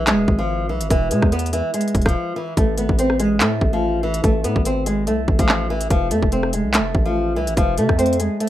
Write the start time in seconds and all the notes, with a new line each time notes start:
Already playing: B1
0.07 G#3, clap, closed hi-hat
0.13 E1
0.28 G#1, kick
0.39 F3
0.69 B1 E3
0.81 G#1, closed hi-hat
0.90 E1 E3, kick, closed hi-hat
1.11 B2 G#3, closed hi-hat
1.22 E2, kick, cross-stick
1.32 B3, closed hi-hat
1.39 closed hi-hat
1.46 closed hi-hat
1.53 E3, closed hi-hat
1.74 G#3, closed hi-hat
1.81 closed hi-hat
1.88 closed hi-hat
1.95 E1, kick, closed hi-hat
2.02 F3, closed hi-hat
2.06 E1, kick, cross-stick, closed hi-hat
2.36 E3
2.57 A1 A3, kick, closed hi-hat
2.78 G#1 B3, closed hi-hat
2.89 A1, kick
2.99 C4, closed hi-hat
3.10 cross-stick
3.20 G#3, closed hi-hat
3.40 A2 A3, clap, closed hi-hat
3.61 A1, kick
3.73 F3
4.03 E3
4.14 closed hi-hat
4.24 A1 A3, kick, closed hi-hat
4.44 A2 B3, closed hi-hat
4.56 G#1, kick
4.65 C4, closed hi-hat
4.86 G#3, closed hi-hat
5.07 C2 A3, closed hi-hat
5.28 A1, kick
5.39 A1 F3, kick, closed hi-hat
5.49 clap
5.70 E3
5.81 closed hi-hat
5.90 F1 F3, kick, closed hi-hat
6.11 F2 A3, closed hi-hat
6.22 F1, kick
6.32 C4, closed hi-hat
6.43 cross-stick
6.53 G#3, closed hi-hat
6.64 C2
6.74 A3, clap, closed hi-hat
6.79 F1
6.95 A1, kick
7.05 F3
7.36 C2 E3
7.47 A1, closed hi-hat
7.57 F1 F3, kick, closed hi-hat
7.78 C3 A3, closed hi-hat
7.89 F2, kick, cross-stick
7.99 C4, closed hi-hat
8.06 closed hi-hat
8.13 closed hi-hat
8.20 G#3, closed hi-hat
8.40 A3, closed hi-hat